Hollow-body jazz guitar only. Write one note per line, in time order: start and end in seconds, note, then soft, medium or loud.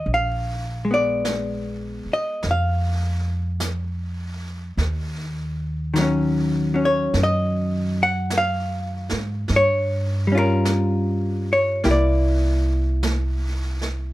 0.00 0.11 D#5 medium
0.14 0.93 F5 medium
0.85 4.77 G#3 soft
0.91 4.80 B3 soft
0.91 2.12 D5 medium
2.13 2.47 D#5 medium
2.51 4.41 F5 medium
5.94 9.48 D#3 soft
5.98 6.73 F#3 soft
5.98 6.74 C#4 soft
6.74 9.49 F#3 soft
6.74 9.50 C#4 soft
6.85 7.19 C#5 medium
7.23 8.01 D#5 medium
8.03 8.36 F#5 medium
8.38 9.55 F5 medium
9.56 10.36 C#5 medium
10.27 11.83 G3 soft
10.32 11.83 C#4 soft
10.32 11.84 F4 soft
10.39 11.52 A#4 soft
11.53 11.85 C#5 medium
11.84 14.13 A#3 soft
11.84 14.13 E4 soft
11.84 11.90 G4 soft
11.91 13.82 D5 medium